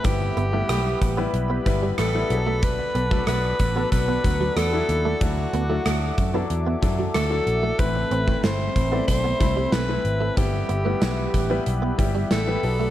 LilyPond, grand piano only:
\new Staff \with { instrumentName = "Grand piano" } { \time 4/4 \key e \minor \tempo 4 = 93 <g b e' b'>8. <g b e' b'>4 <g b e' b'>8. <g b e' b'>8. <g b e' b'>16 <fis b d' gis' a'>8~ | <fis b d' gis' a'>8 r16 <fis b d' a'>4 <fis b d' a'>8. <fis b d' fis'>8. <fis b d' e'>8. | <fis d' e' a'>8. <fis d' e' a'>4 <fis d' e' a'>8. <fis d' e' a'>8. <fis d' e' a'>8. | <a c' e' b'>8. <a c' e' b''>4 <a c' e' d''>8. <a c' e' b''>8. <a c' e' b'>8. |
<g b e' b'>8. <g b e' b'>4 <g b e' b'>8. <g b e' g'>8. <g b e' b'>16 <fis b d' a'>8 | }